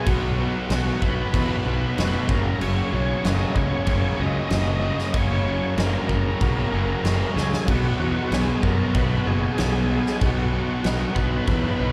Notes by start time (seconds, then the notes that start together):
Already playing: G#4
0.05 B1 B2 F#3 B3 D#4 F#4, kick, crash
0.38 B2 F#3 B3 D#4 F#4
0.69 B1 B2 F#3 B3 D#4 F#4, snare, crash
1.01 B1 B2 F#3 B3 D#4 F#4 B4, kick
1.32 E2 B2 F#3 B3 D#4 F#4, kick, crash
1.64 B1 B2 F#3 B3 D#4 F#4
1.96 F1 B2 F#3 B3 D#4 F#4, snare, crash
2.28 F#1 F#2 C#3 F#3 A#3 C#4 F#4 A#4, kick
2.59 F#1 F#2 C#3 F#3 A#3 C#4 F#4 C#5, crash
2.90 B1 F#2 C#3 F#3 A#3 C#4 F#4
3.22 F#1 F#2 C#3 F#3 A#3 C#4 F#4 D#5, snare, crash
3.54 C#2 F#2 C#3 F#3 A#3 C#4 F#4 C#5, kick
3.86 F#1 F#2 C#3 F#3 A#3 C#4 F#4, kick, crash
4.17 C#2 F#2 C#3 F#3 A#3 C#4 F#4 D#5
4.21 F#2
4.49 F#1 F#2 C#3 F#3 A#3 C#4 F#4, snare, crash
4.80 F#2 C#3 F#3 A#3 C#4 F#4
4.99 snare
5.13 F#1 F#2 C#3 F#3 A#3 C#4 F#4 C#5, kick, crash
5.45 F#2 C#3 F#3 A#3 C#4 F#4
5.77 F#1 F#2 C#3 F#3 A#3 C#4 F#4 A#4, snare, crash
6.08 F#1 F#2 C#3 F#3 A#3 C#4 F#4, kick
6.40 B1 F#2 C#3 F#3 A#3 C#4 F#4, kick, crash
6.71 F#1 F#2 C#3 F#3 A#3 C#4 F#4
7.03 F#1 F#2 C#3 F#3 A#3 C#4 F#4, snare, crash
7.35 C#2 F#2 C#3 F#3 A#3 C#4 F#4 G#4, snare
7.54 snare
7.67 B1 B2 F#3 B3 D#4 F#4, kick, crash
7.98 E2 B2 F#3 B3 D#4 F#4
8.29 B1 B2 F#3 B3 D#4 F#4 G#4, snare, crash
8.62 F#2 B2 F#3 B3 D#4 F#4 A#4, kick
8.94 B1 B2 F#3 B3 D#4 F#4 B4, kick, crash
9.25 F#1 B2 F#3 B3 D#4 F#4 G#4
9.57 B1 B2 F#3 B3 D#4 F#4, snare, crash
9.90 B2 F#3 B3 D#4 F#4
10.06 snare
10.21 B1 B2 F#3 B3 D#4 F#4, kick, crash
10.52 B2 F#3 B3 D#4 F#4
10.83 B1 B2 F#3 B3 D#4 F#4, snare, crash
11.15 B1 B2 F#3 B3 D#4 F#4 B4, kick
11.47 E2 B2 F#3 B3 D#4 F#4, kick, crash
11.79 B1 B2 F#3 B3 D#4 F#4